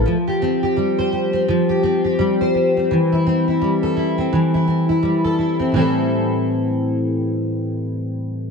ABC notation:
X:1
M:4/4
L:1/16
Q:"Swing 16ths" 1/4=85
K:Am
V:1 name="Steel-string acoustic guitar"
F, G C G G, c G C F, G C G G, c G C | E, E C E G, A E C E, E C E G, A E C | [A,,E,G,CEA]16 |]